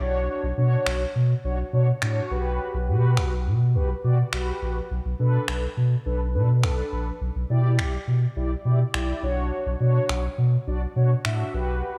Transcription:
0.00 0.28 B1 medium
0.00 0.46 D4 medium
0.00 0.46 F#4 medium
0.00 0.46 C#5 loud
0.43 0.53 B1 medium
0.57 0.76 B2 loud
0.57 1.03 D4 medium
0.57 1.03 F#4 medium
0.57 1.03 C#5 loud
0.86 1.05 B1 loud
0.86 finger snap loud
1.16 1.34 B2 loud
1.44 1.63 B1 loud
1.44 1.58 D4 medium
1.44 1.58 F#4 medium
1.44 1.59 C#5 medium
1.73 1.92 B2 loud
1.73 1.87 D4 medium
1.73 1.87 F#4 medium
1.73 1.87 C#5 loud
2.02 2.21 A2 medium
2.02 2.31 D4 medium
2.02 2.29 F#4 medium
2.02 2.31 C#5 medium
2.02 finger snap loud
2.30 2.59 B1 medium
2.30 2.77 F#4 medium
2.30 2.77 G4 medium
2.30 2.77 B4 loud
2.74 2.90 B1 loud
2.88 3.19 B2 loud
2.88 3.33 F#4 medium
2.88 3.34 G4 medium
2.88 3.34 B4 loud
3.17 3.48 B1 loud
3.17 finger snap loud
3.46 3.77 B2 loud
3.75 3.94 B1 loud
3.75 3.89 F#4 medium
3.75 3.89 G4 medium
3.75 3.89 B4 loud
4.04 4.23 B2 loud
4.04 4.18 F#4 medium
4.04 4.18 G4 medium
4.04 4.18 D5 loud
4.33 4.52 B1 medium
4.33 4.78 F#4 medium
4.33 4.78 G4 medium
4.33 4.78 B4 medium
4.33 finger snap loud
4.62 4.81 A#1 medium
4.91 5.00 B1 loud
5.05 5.14 B1 medium
5.19 5.38 B2 medium
5.19 5.64 D4 medium
5.19 5.64 A4 medium
5.19 5.65 B4 loud
5.48 5.67 B1 loud
5.48 finger snap loud
5.77 5.96 B2 medium
6.06 6.36 B1 loud
6.06 6.20 D4 medium
6.06 6.20 A4 medium
6.06 6.20 B4 loud
6.34 6.65 B2 loud
6.34 6.48 D4 medium
6.34 6.49 A4 medium
6.34 6.49 B4 loud
6.63 6.82 B1 medium
6.63 7.08 D4 medium
6.63 7.09 A4 medium
6.63 7.09 B4 medium
6.63 finger snap loud
6.92 7.11 A#1 medium
7.21 7.30 B1 medium
7.36 7.45 B1 medium
7.50 7.80 B2 medium
7.50 7.95 E4 medium
7.50 7.95 G4 medium
7.50 7.95 D5 loud
7.79 7.97 B1 loud
7.79 finger snap loud
8.08 8.26 B2 medium
8.36 8.55 B1 loud
8.36 8.50 E4 medium
8.36 8.50 G4 medium
8.36 8.51 D5 medium
8.65 8.84 B2 loud
8.65 8.79 E4 medium
8.65 8.79 G4 medium
8.65 8.79 D5 medium
8.94 9.13 B1 loud
8.94 9.23 E4 medium
8.94 9.23 G4 medium
8.94 9.23 D5 loud
8.94 finger snap loud
9.23 9.51 B1 medium
9.23 9.69 D4 medium
9.23 9.69 F#4 medium
9.23 9.69 C#5 loud
9.66 9.76 B1 loud
9.80 9.99 B2 loud
9.80 10.26 D4 medium
9.80 10.26 F#4 medium
9.80 10.26 C#5 loud
10.09 10.28 B1 loud
10.09 finger snap loud
10.38 10.57 B2 loud
10.67 10.86 B1 loud
10.67 10.81 D4 medium
10.67 10.81 F#4 medium
10.67 10.82 D5 medium
10.96 11.15 B2 loud
10.96 11.10 D4 medium
10.96 11.10 F#4 medium
10.96 11.10 C#5 loud
11.25 11.44 A2 medium
11.25 11.54 D4 medium
11.25 11.52 F#4 medium
11.25 11.54 E5 medium
11.25 finger snap loud
11.53 11.82 B1 medium
11.53 11.98 F#4 medium
11.53 11.98 G4 medium
11.53 11.98 B4 loud

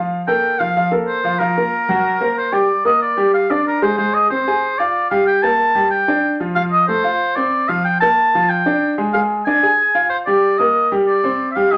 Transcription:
0.00 0.21 F3 medium
0.00 0.21 F4 medium
0.00 0.21 F5 medium
0.28 0.54 A#3 medium
0.28 0.54 A4 medium
0.28 0.54 A#4 medium
0.28 0.61 G5 loud
0.59 0.73 F3 medium
0.59 0.73 F4 medium
0.59 0.91 F5 medium
0.59 0.73 F5 medium
0.76 0.89 F3 medium
0.76 0.89 F4 medium
0.76 0.90 F5 medium
0.91 1.18 A#3 medium
0.91 1.18 A4 medium
0.91 1.18 A#4 medium
1.07 1.40 C5 medium
1.24 1.37 F3 medium
1.24 1.37 F4 medium
1.24 1.38 F5 medium
1.38 1.53 F3 medium
1.38 1.53 F4 medium
1.38 2.36 A#4 medium
1.38 1.54 F5 medium
1.57 1.83 A#3 medium
1.57 1.83 F4 medium
1.57 1.83 A#4 medium
1.89 2.15 F#3 medium
1.89 2.15 F#4 medium
1.89 2.15 F#5 medium
2.20 2.47 A#3 medium
2.20 2.47 A#4 medium
2.20 2.47 C5 medium
2.38 2.54 C5 medium
2.52 2.66 G3 medium
2.52 2.66 G4 medium
2.52 2.85 D5 medium
2.52 2.66 G5 medium
2.85 3.11 A#3 medium
2.85 3.12 A#4 medium
2.85 3.00 D#5 medium
3.02 3.32 D5 medium
3.17 3.44 G3 medium
3.17 3.44 G4 medium
3.34 3.52 F5 medium
3.50 3.76 D4 medium
3.50 3.66 D5 medium
3.50 3.77 D5 medium
3.67 3.81 A#4 medium
3.82 3.95 G#3 medium
3.82 3.95 G#4 medium
3.82 3.97 C5 medium
3.97 4.25 G#3 medium
3.97 4.25 G#4 medium
3.97 4.15 C5 medium
4.14 4.29 D#5 medium
4.30 4.43 C4 medium
4.30 4.80 C5 medium
4.30 4.44 C5 medium
4.47 4.73 G#4 medium
4.47 4.74 G#5 medium
4.79 5.06 F4 medium
4.79 5.10 D5 loud
4.79 5.06 F5 medium
5.10 5.38 G3 medium
5.10 5.38 G4 medium
5.10 5.26 F5 medium
5.27 5.44 G5 loud
5.42 5.70 A#3 medium
5.42 5.70 A#4 medium
5.42 5.90 A5 loud
5.75 6.02 G3 medium
5.75 6.02 G4 medium
5.91 6.36 G5 medium
6.08 6.34 D4 medium
6.08 6.34 D5 medium
6.40 6.53 F3 medium
6.40 6.53 F4 medium
6.55 6.83 F3 medium
6.55 6.83 F4 medium
6.55 6.63 F5 medium
6.71 6.87 D#5 medium
6.87 7.01 A3 medium
6.87 7.02 A4 medium
6.87 7.37 C5 medium
7.04 7.31 F4 medium
7.04 7.31 F5 medium
7.36 7.63 C4 medium
7.36 7.63 C5 medium
7.36 7.70 D5 medium
7.69 7.95 F3 medium
7.69 7.95 F4 medium
7.69 7.84 F5 medium
7.84 8.00 G5 loud
8.00 8.28 A#3 medium
8.00 8.28 A#4 medium
8.00 8.50 A5 loud
8.35 8.61 F3 medium
8.35 8.61 F4 medium
8.49 8.98 G5 medium
8.66 8.92 D4 medium
8.66 8.92 D5 medium
8.98 9.11 G#3 medium
8.98 9.11 G#4 medium
9.13 9.41 G#3 medium
9.13 9.41 G#4 medium
9.13 9.21 F5 medium
9.45 9.60 D4 medium
9.45 9.60 D5 medium
9.45 10.06 G#5 medium
9.63 9.89 G#4 medium
9.63 9.89 G#5 medium
9.95 10.21 F4 medium
9.95 10.21 F5 medium
10.09 10.17 C5 medium
10.26 10.53 G3 medium
10.26 10.53 G4 medium
10.26 10.59 D5 medium
10.58 10.86 A#3 medium
10.58 10.86 A#4 medium
10.58 10.90 D#5 medium
10.91 11.18 G3 medium
10.91 11.18 G4 medium
11.06 11.48 D5 medium
11.24 11.50 C4 medium
11.24 11.50 C5 medium
11.51 11.57 E5 medium
11.55 11.69 G3 medium
11.55 11.69 G4 medium
11.55 11.73 F5 medium
11.71 11.78 G3 medium
11.71 11.78 G4 medium
11.71 11.78 D#5 medium

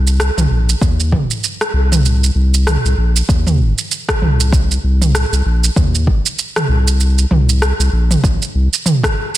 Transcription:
0.00 0.31 C2 medium
0.07 shaker medium
0.20 cross-stick medium
0.20 shaker soft
0.37 0.47 C2 medium
0.37 mid tom medium
0.37 shaker soft
0.51 0.75 A#1 medium
0.69 shaker medium
0.81 1.14 D#2 medium
0.81 kick loud
0.81 shaker soft
1.00 shaker soft
1.12 1.26 G1 medium
1.12 kick medium
1.12 mid tom medium
1.31 shaker medium
1.44 shaker soft
1.61 cross-stick medium
1.61 shaker soft
1.73 2.31 C2 medium
1.92 mid tom medium
1.92 shaker medium
2.05 shaker soft
2.24 shaker soft
2.35 2.77 C2 loud
2.54 shaker medium
2.67 cross-stick medium
2.67 mid tom medium
2.67 shaker medium
2.85 2.95 C2 medium
2.85 shaker soft
2.98 3.22 A#1 medium
3.16 shaker medium
3.29 3.61 D#2 medium
3.29 kick loud
3.29 shaker soft
3.47 mid tom medium
3.47 shaker soft
3.60 3.73 G1 loud
3.78 shaker medium
3.91 shaker medium
4.09 kick medium
4.09 cross-stick medium
4.09 shaker soft
4.22 4.78 C2 medium
4.22 mid tom medium
4.40 shaker medium
4.53 kick loud
4.53 shaker medium
4.71 shaker soft
4.84 5.25 C2 loud
5.02 mid tom medium
5.02 shaker medium
5.15 cross-stick medium
5.15 shaker medium
5.32 5.42 C2 medium
5.32 shaker soft
5.46 5.70 A#1 medium
5.64 shaker medium
5.76 6.09 D#2 medium
5.76 kick loud
5.76 mid tom medium
5.76 shaker soft
5.95 shaker soft
6.07 6.21 G1 medium
6.07 kick medium
6.26 shaker medium
6.39 shaker medium
6.56 cross-stick medium
6.56 mid tom medium
6.56 shaker soft
6.69 7.26 C2 medium
6.88 shaker medium
7.00 shaker medium
7.18 shaker soft
7.31 7.73 C2 medium
7.31 mid tom medium
7.49 shaker medium
7.62 cross-stick medium
7.62 shaker medium
7.79 7.89 C2 medium
7.79 shaker soft
7.92 8.17 A#1 medium
8.11 mid tom medium
8.11 shaker medium
8.24 8.37 A#1 loud
8.24 kick loud
8.24 shaker soft
8.42 shaker soft
8.55 8.68 C2 loud
8.73 shaker medium
8.86 mid tom medium
8.86 shaker medium
9.04 kick medium
9.04 cross-stick medium
9.04 shaker soft

